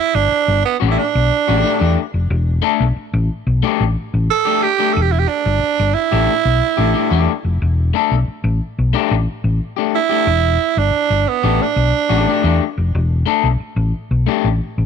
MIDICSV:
0, 0, Header, 1, 5, 480
1, 0, Start_track
1, 0, Key_signature, 1, "minor"
1, 0, Tempo, 665188
1, 1660, Time_signature, 4, 2, 24, 8
1, 10721, End_track
2, 0, Start_track
2, 0, Title_t, "Tenor saxophone"
2, 0, Program_c, 0, 66
2, 0, Note_on_c, 0, 64, 111
2, 106, Note_on_c, 0, 62, 106
2, 117, Note_off_c, 0, 64, 0
2, 465, Note_off_c, 0, 62, 0
2, 469, Note_on_c, 0, 59, 89
2, 553, Note_off_c, 0, 59, 0
2, 656, Note_on_c, 0, 64, 71
2, 710, Note_on_c, 0, 62, 92
2, 721, Note_off_c, 0, 64, 0
2, 1424, Note_off_c, 0, 62, 0
2, 3108, Note_on_c, 0, 69, 117
2, 3338, Note_on_c, 0, 67, 112
2, 3348, Note_off_c, 0, 69, 0
2, 3556, Note_on_c, 0, 69, 94
2, 3567, Note_off_c, 0, 67, 0
2, 3618, Note_on_c, 0, 67, 93
2, 3628, Note_off_c, 0, 69, 0
2, 3692, Note_on_c, 0, 64, 87
2, 3702, Note_off_c, 0, 67, 0
2, 3745, Note_on_c, 0, 67, 94
2, 3756, Note_off_c, 0, 64, 0
2, 3808, Note_on_c, 0, 62, 97
2, 3819, Note_off_c, 0, 67, 0
2, 4285, Note_on_c, 0, 64, 103
2, 4295, Note_off_c, 0, 62, 0
2, 5248, Note_off_c, 0, 64, 0
2, 7181, Note_on_c, 0, 64, 109
2, 7781, Note_on_c, 0, 62, 96
2, 7792, Note_off_c, 0, 64, 0
2, 8143, Note_on_c, 0, 59, 89
2, 8153, Note_off_c, 0, 62, 0
2, 8386, Note_on_c, 0, 62, 92
2, 8397, Note_off_c, 0, 59, 0
2, 9101, Note_off_c, 0, 62, 0
2, 10721, End_track
3, 0, Start_track
3, 0, Title_t, "Clean electric guitar"
3, 0, Program_c, 1, 27
3, 576, Note_on_c, 1, 67, 85
3, 583, Note_on_c, 1, 62, 79
3, 590, Note_on_c, 1, 57, 74
3, 724, Note_off_c, 1, 67, 0
3, 727, Note_off_c, 1, 62, 0
3, 730, Note_off_c, 1, 57, 0
3, 1066, Note_on_c, 1, 67, 82
3, 1070, Note_on_c, 1, 62, 79
3, 1080, Note_on_c, 1, 57, 64
3, 1168, Note_off_c, 1, 57, 0
3, 1176, Note_off_c, 1, 62, 0
3, 1177, Note_on_c, 1, 57, 73
3, 1185, Note_off_c, 1, 67, 0
3, 1185, Note_on_c, 1, 62, 77
3, 1194, Note_on_c, 1, 67, 69
3, 1281, Note_off_c, 1, 67, 0
3, 1290, Note_on_c, 1, 67, 73
3, 1291, Note_off_c, 1, 57, 0
3, 1291, Note_off_c, 1, 62, 0
3, 1299, Note_on_c, 1, 62, 57
3, 1303, Note_on_c, 1, 57, 62
3, 1438, Note_off_c, 1, 67, 0
3, 1443, Note_off_c, 1, 62, 0
3, 1445, Note_off_c, 1, 57, 0
3, 1891, Note_on_c, 1, 57, 95
3, 1897, Note_on_c, 1, 62, 99
3, 1906, Note_on_c, 1, 69, 103
3, 2038, Note_off_c, 1, 57, 0
3, 2041, Note_off_c, 1, 62, 0
3, 2046, Note_off_c, 1, 69, 0
3, 2618, Note_on_c, 1, 57, 88
3, 2622, Note_on_c, 1, 62, 95
3, 2631, Note_on_c, 1, 67, 103
3, 2760, Note_off_c, 1, 57, 0
3, 2762, Note_off_c, 1, 62, 0
3, 2767, Note_off_c, 1, 67, 0
3, 3213, Note_on_c, 1, 67, 82
3, 3221, Note_on_c, 1, 62, 67
3, 3226, Note_on_c, 1, 57, 66
3, 3357, Note_off_c, 1, 67, 0
3, 3362, Note_off_c, 1, 62, 0
3, 3364, Note_off_c, 1, 57, 0
3, 3453, Note_on_c, 1, 67, 73
3, 3458, Note_on_c, 1, 62, 60
3, 3464, Note_on_c, 1, 57, 60
3, 3566, Note_off_c, 1, 67, 0
3, 3569, Note_off_c, 1, 62, 0
3, 3571, Note_off_c, 1, 57, 0
3, 4413, Note_on_c, 1, 67, 81
3, 4416, Note_on_c, 1, 62, 77
3, 4428, Note_on_c, 1, 57, 73
3, 4557, Note_off_c, 1, 67, 0
3, 4558, Note_off_c, 1, 62, 0
3, 4564, Note_off_c, 1, 57, 0
3, 4886, Note_on_c, 1, 67, 76
3, 4892, Note_on_c, 1, 62, 71
3, 4900, Note_on_c, 1, 57, 62
3, 4997, Note_off_c, 1, 57, 0
3, 5001, Note_off_c, 1, 62, 0
3, 5005, Note_on_c, 1, 57, 61
3, 5009, Note_off_c, 1, 67, 0
3, 5010, Note_on_c, 1, 62, 61
3, 5018, Note_on_c, 1, 67, 70
3, 5118, Note_off_c, 1, 67, 0
3, 5121, Note_off_c, 1, 57, 0
3, 5124, Note_off_c, 1, 62, 0
3, 5126, Note_on_c, 1, 67, 87
3, 5137, Note_on_c, 1, 62, 79
3, 5142, Note_on_c, 1, 57, 64
3, 5274, Note_off_c, 1, 67, 0
3, 5279, Note_off_c, 1, 62, 0
3, 5282, Note_off_c, 1, 57, 0
3, 5728, Note_on_c, 1, 57, 82
3, 5736, Note_on_c, 1, 62, 94
3, 5743, Note_on_c, 1, 69, 107
3, 5873, Note_off_c, 1, 57, 0
3, 5877, Note_off_c, 1, 62, 0
3, 5881, Note_off_c, 1, 69, 0
3, 6447, Note_on_c, 1, 57, 93
3, 6453, Note_on_c, 1, 62, 107
3, 6459, Note_on_c, 1, 67, 101
3, 6593, Note_off_c, 1, 57, 0
3, 6596, Note_off_c, 1, 62, 0
3, 6599, Note_off_c, 1, 67, 0
3, 7047, Note_on_c, 1, 67, 70
3, 7058, Note_on_c, 1, 62, 69
3, 7059, Note_on_c, 1, 57, 62
3, 7193, Note_off_c, 1, 67, 0
3, 7198, Note_off_c, 1, 62, 0
3, 7199, Note_off_c, 1, 57, 0
3, 7284, Note_on_c, 1, 67, 74
3, 7295, Note_on_c, 1, 62, 66
3, 7297, Note_on_c, 1, 57, 56
3, 7400, Note_off_c, 1, 67, 0
3, 7406, Note_off_c, 1, 62, 0
3, 7407, Note_off_c, 1, 57, 0
3, 8251, Note_on_c, 1, 67, 79
3, 8258, Note_on_c, 1, 62, 69
3, 8261, Note_on_c, 1, 57, 63
3, 8396, Note_off_c, 1, 67, 0
3, 8399, Note_off_c, 1, 62, 0
3, 8400, Note_off_c, 1, 57, 0
3, 8727, Note_on_c, 1, 67, 82
3, 8732, Note_on_c, 1, 62, 87
3, 8736, Note_on_c, 1, 57, 64
3, 8848, Note_off_c, 1, 57, 0
3, 8857, Note_on_c, 1, 57, 68
3, 8859, Note_off_c, 1, 62, 0
3, 8862, Note_off_c, 1, 67, 0
3, 8867, Note_on_c, 1, 62, 73
3, 8871, Note_on_c, 1, 67, 82
3, 8961, Note_off_c, 1, 67, 0
3, 8967, Note_off_c, 1, 62, 0
3, 8968, Note_off_c, 1, 57, 0
3, 8970, Note_on_c, 1, 67, 81
3, 8976, Note_on_c, 1, 62, 72
3, 8980, Note_on_c, 1, 57, 75
3, 9116, Note_off_c, 1, 67, 0
3, 9119, Note_off_c, 1, 62, 0
3, 9121, Note_off_c, 1, 57, 0
3, 9569, Note_on_c, 1, 57, 85
3, 9578, Note_on_c, 1, 62, 92
3, 9579, Note_on_c, 1, 69, 92
3, 9716, Note_off_c, 1, 57, 0
3, 9720, Note_off_c, 1, 62, 0
3, 9721, Note_off_c, 1, 69, 0
3, 10294, Note_on_c, 1, 57, 83
3, 10302, Note_on_c, 1, 62, 91
3, 10309, Note_on_c, 1, 67, 104
3, 10440, Note_off_c, 1, 57, 0
3, 10444, Note_off_c, 1, 62, 0
3, 10447, Note_off_c, 1, 67, 0
3, 10721, End_track
4, 0, Start_track
4, 0, Title_t, "Fingered electric bass"
4, 0, Program_c, 2, 33
4, 105, Note_on_c, 2, 31, 101
4, 209, Note_off_c, 2, 31, 0
4, 346, Note_on_c, 2, 31, 96
4, 449, Note_off_c, 2, 31, 0
4, 591, Note_on_c, 2, 33, 83
4, 692, Note_off_c, 2, 33, 0
4, 831, Note_on_c, 2, 35, 102
4, 932, Note_off_c, 2, 35, 0
4, 1073, Note_on_c, 2, 33, 94
4, 1172, Note_off_c, 2, 33, 0
4, 1307, Note_on_c, 2, 40, 93
4, 1408, Note_off_c, 2, 40, 0
4, 1543, Note_on_c, 2, 29, 86
4, 1646, Note_off_c, 2, 29, 0
4, 1662, Note_on_c, 2, 28, 114
4, 1869, Note_off_c, 2, 28, 0
4, 2023, Note_on_c, 2, 35, 90
4, 2125, Note_off_c, 2, 35, 0
4, 2262, Note_on_c, 2, 33, 113
4, 2365, Note_off_c, 2, 33, 0
4, 2501, Note_on_c, 2, 35, 94
4, 2604, Note_off_c, 2, 35, 0
4, 2745, Note_on_c, 2, 33, 109
4, 2845, Note_off_c, 2, 33, 0
4, 2984, Note_on_c, 2, 33, 87
4, 3085, Note_off_c, 2, 33, 0
4, 3582, Note_on_c, 2, 28, 117
4, 3787, Note_off_c, 2, 28, 0
4, 3938, Note_on_c, 2, 31, 106
4, 4041, Note_off_c, 2, 31, 0
4, 4181, Note_on_c, 2, 31, 98
4, 4282, Note_off_c, 2, 31, 0
4, 4420, Note_on_c, 2, 33, 103
4, 4521, Note_off_c, 2, 33, 0
4, 4657, Note_on_c, 2, 35, 97
4, 4760, Note_off_c, 2, 35, 0
4, 4894, Note_on_c, 2, 33, 82
4, 4998, Note_off_c, 2, 33, 0
4, 5133, Note_on_c, 2, 40, 100
4, 5237, Note_off_c, 2, 40, 0
4, 5373, Note_on_c, 2, 29, 87
4, 5477, Note_off_c, 2, 29, 0
4, 5497, Note_on_c, 2, 28, 104
4, 5703, Note_off_c, 2, 28, 0
4, 5855, Note_on_c, 2, 35, 83
4, 5958, Note_off_c, 2, 35, 0
4, 6089, Note_on_c, 2, 33, 108
4, 6194, Note_off_c, 2, 33, 0
4, 6339, Note_on_c, 2, 35, 91
4, 6441, Note_off_c, 2, 35, 0
4, 6575, Note_on_c, 2, 33, 105
4, 6678, Note_off_c, 2, 33, 0
4, 6812, Note_on_c, 2, 33, 94
4, 6916, Note_off_c, 2, 33, 0
4, 7409, Note_on_c, 2, 28, 114
4, 7619, Note_off_c, 2, 28, 0
4, 7771, Note_on_c, 2, 31, 100
4, 7876, Note_off_c, 2, 31, 0
4, 8011, Note_on_c, 2, 31, 95
4, 8116, Note_off_c, 2, 31, 0
4, 8253, Note_on_c, 2, 33, 92
4, 8357, Note_off_c, 2, 33, 0
4, 8488, Note_on_c, 2, 35, 100
4, 8595, Note_off_c, 2, 35, 0
4, 8731, Note_on_c, 2, 33, 95
4, 8837, Note_off_c, 2, 33, 0
4, 8976, Note_on_c, 2, 40, 94
4, 9080, Note_off_c, 2, 40, 0
4, 9219, Note_on_c, 2, 29, 98
4, 9322, Note_off_c, 2, 29, 0
4, 9343, Note_on_c, 2, 28, 116
4, 9549, Note_off_c, 2, 28, 0
4, 9696, Note_on_c, 2, 35, 87
4, 9801, Note_off_c, 2, 35, 0
4, 9932, Note_on_c, 2, 33, 106
4, 10039, Note_off_c, 2, 33, 0
4, 10180, Note_on_c, 2, 35, 86
4, 10284, Note_off_c, 2, 35, 0
4, 10423, Note_on_c, 2, 33, 109
4, 10526, Note_off_c, 2, 33, 0
4, 10664, Note_on_c, 2, 33, 87
4, 10721, Note_off_c, 2, 33, 0
4, 10721, End_track
5, 0, Start_track
5, 0, Title_t, "Muted fingered electric bass strokes"
5, 229, Note_on_c, 9, 29, 50
5, 301, Note_off_c, 9, 29, 0
5, 2138, Note_on_c, 9, 29, 48
5, 2210, Note_off_c, 9, 29, 0
5, 4062, Note_on_c, 9, 29, 46
5, 4134, Note_off_c, 9, 29, 0
5, 5974, Note_on_c, 9, 29, 47
5, 6046, Note_off_c, 9, 29, 0
5, 7897, Note_on_c, 9, 29, 46
5, 7969, Note_off_c, 9, 29, 0
5, 9814, Note_on_c, 9, 29, 49
5, 9886, Note_off_c, 9, 29, 0
5, 10721, End_track
0, 0, End_of_file